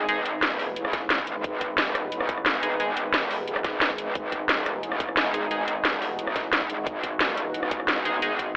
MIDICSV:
0, 0, Header, 1, 5, 480
1, 0, Start_track
1, 0, Tempo, 338983
1, 122, Time_signature, 4, 2, 24, 8
1, 12132, End_track
2, 0, Start_track
2, 0, Title_t, "Ambient pad"
2, 0, Program_c, 0, 92
2, 0, Note_on_c, 0, 56, 85
2, 0, Note_on_c, 0, 59, 78
2, 0, Note_on_c, 0, 63, 77
2, 0, Note_on_c, 0, 71, 94
2, 5850, Note_off_c, 0, 71, 0
2, 5882, Note_on_c, 0, 66, 93
2, 12132, Note_off_c, 0, 56, 0
2, 12132, Note_off_c, 0, 59, 0
2, 12132, Note_off_c, 0, 63, 0
2, 12132, Note_off_c, 0, 66, 0
2, 12132, End_track
3, 0, Start_track
3, 0, Title_t, "Synth stab"
3, 0, Program_c, 1, 62
3, 121, Note_on_c, 1, 68, 102
3, 122, Note_on_c, 1, 56, 89
3, 122, Note_on_c, 1, 63, 84
3, 272, Note_off_c, 1, 56, 0
3, 272, Note_off_c, 1, 63, 0
3, 272, Note_off_c, 1, 68, 0
3, 3721, Note_on_c, 1, 56, 74
3, 3722, Note_on_c, 1, 63, 68
3, 3722, Note_on_c, 1, 68, 83
3, 3933, Note_off_c, 1, 56, 0
3, 3933, Note_off_c, 1, 63, 0
3, 3933, Note_off_c, 1, 68, 0
3, 3961, Note_on_c, 1, 56, 92
3, 3961, Note_on_c, 1, 63, 82
3, 3961, Note_on_c, 1, 68, 97
3, 4112, Note_off_c, 1, 56, 0
3, 4112, Note_off_c, 1, 63, 0
3, 4112, Note_off_c, 1, 68, 0
3, 7562, Note_on_c, 1, 56, 74
3, 7562, Note_on_c, 1, 63, 72
3, 7562, Note_on_c, 1, 68, 84
3, 7773, Note_off_c, 1, 56, 0
3, 7773, Note_off_c, 1, 63, 0
3, 7773, Note_off_c, 1, 68, 0
3, 7801, Note_on_c, 1, 63, 83
3, 7801, Note_on_c, 1, 68, 98
3, 7802, Note_on_c, 1, 56, 88
3, 7952, Note_off_c, 1, 56, 0
3, 7952, Note_off_c, 1, 63, 0
3, 7952, Note_off_c, 1, 68, 0
3, 11402, Note_on_c, 1, 56, 75
3, 11402, Note_on_c, 1, 63, 69
3, 11402, Note_on_c, 1, 68, 83
3, 11613, Note_off_c, 1, 56, 0
3, 11613, Note_off_c, 1, 63, 0
3, 11613, Note_off_c, 1, 68, 0
3, 11642, Note_on_c, 1, 56, 87
3, 11642, Note_on_c, 1, 63, 84
3, 11642, Note_on_c, 1, 68, 99
3, 11792, Note_off_c, 1, 56, 0
3, 11792, Note_off_c, 1, 68, 0
3, 11793, Note_off_c, 1, 63, 0
3, 12132, End_track
4, 0, Start_track
4, 0, Title_t, "Wobble bass"
4, 0, Program_c, 2, 39
4, 121, Note_on_c, 2, 32, 97
4, 582, Note_off_c, 2, 32, 0
4, 602, Note_on_c, 2, 27, 97
4, 1063, Note_off_c, 2, 27, 0
4, 1081, Note_on_c, 2, 33, 92
4, 1782, Note_off_c, 2, 33, 0
4, 1800, Note_on_c, 2, 32, 96
4, 2022, Note_off_c, 2, 32, 0
4, 2042, Note_on_c, 2, 32, 96
4, 2502, Note_off_c, 2, 32, 0
4, 2521, Note_on_c, 2, 27, 99
4, 2982, Note_off_c, 2, 27, 0
4, 3001, Note_on_c, 2, 33, 93
4, 3702, Note_off_c, 2, 33, 0
4, 3721, Note_on_c, 2, 32, 97
4, 3942, Note_off_c, 2, 32, 0
4, 3961, Note_on_c, 2, 32, 97
4, 4422, Note_off_c, 2, 32, 0
4, 4441, Note_on_c, 2, 27, 96
4, 4902, Note_off_c, 2, 27, 0
4, 4921, Note_on_c, 2, 27, 97
4, 5142, Note_off_c, 2, 27, 0
4, 5162, Note_on_c, 2, 32, 92
4, 5862, Note_off_c, 2, 32, 0
4, 5882, Note_on_c, 2, 32, 98
4, 6343, Note_off_c, 2, 32, 0
4, 6360, Note_on_c, 2, 27, 94
4, 6822, Note_off_c, 2, 27, 0
4, 6840, Note_on_c, 2, 33, 97
4, 7542, Note_off_c, 2, 33, 0
4, 7562, Note_on_c, 2, 32, 95
4, 7783, Note_off_c, 2, 32, 0
4, 7801, Note_on_c, 2, 32, 98
4, 8262, Note_off_c, 2, 32, 0
4, 8280, Note_on_c, 2, 27, 95
4, 8742, Note_off_c, 2, 27, 0
4, 8761, Note_on_c, 2, 33, 97
4, 9462, Note_off_c, 2, 33, 0
4, 9482, Note_on_c, 2, 32, 96
4, 9702, Note_off_c, 2, 32, 0
4, 9722, Note_on_c, 2, 32, 97
4, 10182, Note_off_c, 2, 32, 0
4, 10202, Note_on_c, 2, 27, 96
4, 10662, Note_off_c, 2, 27, 0
4, 10682, Note_on_c, 2, 33, 96
4, 11383, Note_off_c, 2, 33, 0
4, 11402, Note_on_c, 2, 32, 97
4, 11622, Note_off_c, 2, 32, 0
4, 11641, Note_on_c, 2, 32, 100
4, 12102, Note_off_c, 2, 32, 0
4, 12132, End_track
5, 0, Start_track
5, 0, Title_t, "Drums"
5, 122, Note_on_c, 9, 42, 83
5, 263, Note_off_c, 9, 42, 0
5, 362, Note_on_c, 9, 42, 97
5, 504, Note_off_c, 9, 42, 0
5, 602, Note_on_c, 9, 38, 127
5, 602, Note_on_c, 9, 42, 82
5, 743, Note_off_c, 9, 38, 0
5, 743, Note_off_c, 9, 42, 0
5, 841, Note_on_c, 9, 46, 76
5, 983, Note_off_c, 9, 46, 0
5, 1081, Note_on_c, 9, 42, 82
5, 1200, Note_on_c, 9, 37, 53
5, 1223, Note_off_c, 9, 42, 0
5, 1321, Note_on_c, 9, 38, 38
5, 1321, Note_on_c, 9, 42, 94
5, 1322, Note_on_c, 9, 36, 118
5, 1342, Note_off_c, 9, 37, 0
5, 1463, Note_off_c, 9, 36, 0
5, 1463, Note_off_c, 9, 38, 0
5, 1463, Note_off_c, 9, 42, 0
5, 1561, Note_on_c, 9, 38, 126
5, 1561, Note_on_c, 9, 42, 83
5, 1682, Note_on_c, 9, 36, 66
5, 1703, Note_off_c, 9, 38, 0
5, 1703, Note_off_c, 9, 42, 0
5, 1801, Note_on_c, 9, 42, 91
5, 1823, Note_off_c, 9, 36, 0
5, 1942, Note_off_c, 9, 42, 0
5, 2042, Note_on_c, 9, 36, 120
5, 2042, Note_on_c, 9, 42, 78
5, 2183, Note_off_c, 9, 36, 0
5, 2183, Note_off_c, 9, 42, 0
5, 2281, Note_on_c, 9, 42, 93
5, 2282, Note_on_c, 9, 36, 67
5, 2422, Note_off_c, 9, 42, 0
5, 2423, Note_off_c, 9, 36, 0
5, 2521, Note_on_c, 9, 38, 127
5, 2521, Note_on_c, 9, 42, 81
5, 2662, Note_off_c, 9, 38, 0
5, 2662, Note_off_c, 9, 42, 0
5, 2762, Note_on_c, 9, 37, 59
5, 2762, Note_on_c, 9, 42, 92
5, 2903, Note_off_c, 9, 37, 0
5, 2903, Note_off_c, 9, 42, 0
5, 3001, Note_on_c, 9, 42, 80
5, 3122, Note_on_c, 9, 37, 52
5, 3143, Note_off_c, 9, 42, 0
5, 3241, Note_on_c, 9, 42, 94
5, 3242, Note_on_c, 9, 36, 119
5, 3263, Note_off_c, 9, 37, 0
5, 3363, Note_on_c, 9, 37, 36
5, 3383, Note_off_c, 9, 36, 0
5, 3383, Note_off_c, 9, 42, 0
5, 3482, Note_on_c, 9, 38, 127
5, 3482, Note_on_c, 9, 42, 83
5, 3504, Note_off_c, 9, 37, 0
5, 3624, Note_off_c, 9, 38, 0
5, 3624, Note_off_c, 9, 42, 0
5, 3723, Note_on_c, 9, 42, 91
5, 3865, Note_off_c, 9, 42, 0
5, 3963, Note_on_c, 9, 42, 79
5, 4105, Note_off_c, 9, 42, 0
5, 4202, Note_on_c, 9, 42, 91
5, 4344, Note_off_c, 9, 42, 0
5, 4442, Note_on_c, 9, 38, 127
5, 4442, Note_on_c, 9, 42, 78
5, 4584, Note_off_c, 9, 38, 0
5, 4584, Note_off_c, 9, 42, 0
5, 4681, Note_on_c, 9, 46, 83
5, 4823, Note_off_c, 9, 46, 0
5, 4921, Note_on_c, 9, 42, 76
5, 5041, Note_on_c, 9, 37, 51
5, 5063, Note_off_c, 9, 42, 0
5, 5161, Note_on_c, 9, 38, 40
5, 5161, Note_on_c, 9, 42, 91
5, 5162, Note_on_c, 9, 36, 118
5, 5183, Note_off_c, 9, 37, 0
5, 5302, Note_off_c, 9, 38, 0
5, 5302, Note_off_c, 9, 42, 0
5, 5303, Note_off_c, 9, 36, 0
5, 5401, Note_on_c, 9, 38, 127
5, 5401, Note_on_c, 9, 42, 79
5, 5522, Note_on_c, 9, 36, 65
5, 5542, Note_off_c, 9, 38, 0
5, 5542, Note_off_c, 9, 42, 0
5, 5641, Note_on_c, 9, 42, 89
5, 5663, Note_off_c, 9, 36, 0
5, 5782, Note_off_c, 9, 42, 0
5, 5882, Note_on_c, 9, 36, 119
5, 5882, Note_on_c, 9, 42, 76
5, 6023, Note_off_c, 9, 36, 0
5, 6023, Note_off_c, 9, 42, 0
5, 6120, Note_on_c, 9, 42, 95
5, 6121, Note_on_c, 9, 36, 61
5, 6262, Note_off_c, 9, 42, 0
5, 6263, Note_off_c, 9, 36, 0
5, 6361, Note_on_c, 9, 38, 125
5, 6361, Note_on_c, 9, 42, 81
5, 6503, Note_off_c, 9, 38, 0
5, 6503, Note_off_c, 9, 42, 0
5, 6602, Note_on_c, 9, 37, 54
5, 6602, Note_on_c, 9, 42, 92
5, 6743, Note_off_c, 9, 37, 0
5, 6743, Note_off_c, 9, 42, 0
5, 6842, Note_on_c, 9, 42, 82
5, 6962, Note_on_c, 9, 37, 49
5, 6984, Note_off_c, 9, 42, 0
5, 7081, Note_on_c, 9, 36, 110
5, 7082, Note_on_c, 9, 42, 90
5, 7104, Note_off_c, 9, 37, 0
5, 7202, Note_on_c, 9, 37, 33
5, 7223, Note_off_c, 9, 36, 0
5, 7224, Note_off_c, 9, 42, 0
5, 7321, Note_on_c, 9, 38, 124
5, 7321, Note_on_c, 9, 42, 77
5, 7344, Note_off_c, 9, 37, 0
5, 7463, Note_off_c, 9, 38, 0
5, 7463, Note_off_c, 9, 42, 0
5, 7562, Note_on_c, 9, 42, 88
5, 7703, Note_off_c, 9, 42, 0
5, 7801, Note_on_c, 9, 42, 80
5, 7942, Note_off_c, 9, 42, 0
5, 8041, Note_on_c, 9, 42, 94
5, 8182, Note_off_c, 9, 42, 0
5, 8281, Note_on_c, 9, 38, 123
5, 8281, Note_on_c, 9, 42, 83
5, 8423, Note_off_c, 9, 38, 0
5, 8423, Note_off_c, 9, 42, 0
5, 8522, Note_on_c, 9, 46, 84
5, 8663, Note_off_c, 9, 46, 0
5, 8762, Note_on_c, 9, 42, 82
5, 8884, Note_on_c, 9, 37, 49
5, 8904, Note_off_c, 9, 42, 0
5, 9001, Note_on_c, 9, 36, 109
5, 9003, Note_on_c, 9, 38, 37
5, 9003, Note_on_c, 9, 42, 93
5, 9025, Note_off_c, 9, 37, 0
5, 9143, Note_off_c, 9, 36, 0
5, 9145, Note_off_c, 9, 38, 0
5, 9145, Note_off_c, 9, 42, 0
5, 9243, Note_on_c, 9, 38, 119
5, 9243, Note_on_c, 9, 42, 83
5, 9362, Note_on_c, 9, 36, 62
5, 9384, Note_off_c, 9, 38, 0
5, 9384, Note_off_c, 9, 42, 0
5, 9482, Note_on_c, 9, 42, 90
5, 9503, Note_off_c, 9, 36, 0
5, 9624, Note_off_c, 9, 42, 0
5, 9722, Note_on_c, 9, 36, 111
5, 9723, Note_on_c, 9, 42, 81
5, 9863, Note_off_c, 9, 36, 0
5, 9864, Note_off_c, 9, 42, 0
5, 9962, Note_on_c, 9, 36, 61
5, 9962, Note_on_c, 9, 42, 100
5, 10103, Note_off_c, 9, 36, 0
5, 10104, Note_off_c, 9, 42, 0
5, 10202, Note_on_c, 9, 38, 120
5, 10202, Note_on_c, 9, 42, 86
5, 10344, Note_off_c, 9, 38, 0
5, 10344, Note_off_c, 9, 42, 0
5, 10442, Note_on_c, 9, 42, 99
5, 10584, Note_off_c, 9, 42, 0
5, 10682, Note_on_c, 9, 42, 82
5, 10802, Note_on_c, 9, 37, 47
5, 10823, Note_off_c, 9, 42, 0
5, 10921, Note_on_c, 9, 42, 99
5, 10922, Note_on_c, 9, 36, 106
5, 10943, Note_off_c, 9, 37, 0
5, 11041, Note_on_c, 9, 37, 36
5, 11063, Note_off_c, 9, 36, 0
5, 11063, Note_off_c, 9, 42, 0
5, 11162, Note_on_c, 9, 38, 115
5, 11162, Note_on_c, 9, 42, 84
5, 11183, Note_off_c, 9, 37, 0
5, 11304, Note_off_c, 9, 38, 0
5, 11304, Note_off_c, 9, 42, 0
5, 11403, Note_on_c, 9, 42, 92
5, 11545, Note_off_c, 9, 42, 0
5, 11643, Note_on_c, 9, 42, 86
5, 11785, Note_off_c, 9, 42, 0
5, 11882, Note_on_c, 9, 36, 61
5, 11884, Note_on_c, 9, 42, 103
5, 12023, Note_off_c, 9, 36, 0
5, 12025, Note_off_c, 9, 42, 0
5, 12132, End_track
0, 0, End_of_file